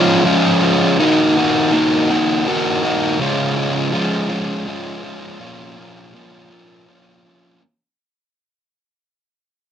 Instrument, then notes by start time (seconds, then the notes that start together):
distorted electric guitar
Already playing: F3 G#3 C#4 F4
0.24 F3 G#3 C#4 F4
0.62 G#3 C#4 F4
1.00 D#3 A#3 D#4 F#4
1.37 A#3 D#4 F#4
1.71 D#3 A#3 D#4 F#4
2.10 A#3 D#4 F#4
2.46 D#3 A#3 D#4 F#4
2.83 A#3 D#4 F#4
3.19 C#3 F3 G#3 C#4 F4
3.56 G#3 C#4 F4
3.91 F3 G#3 C#4 F4
4.29 G#3 C#4 F4
4.67 F3 G#3 C#4 F4
5.03 G#3 C#4 F4
5.40 A#2 F3 A#3 C#4 F4
5.76 A#3 C#4 F4
6.13 F3 A#3 C#4 F4
6.50 A#3 C#4 F4
6.87 F3 A#3 C#4 F4
7.25 A#3 C#4 F4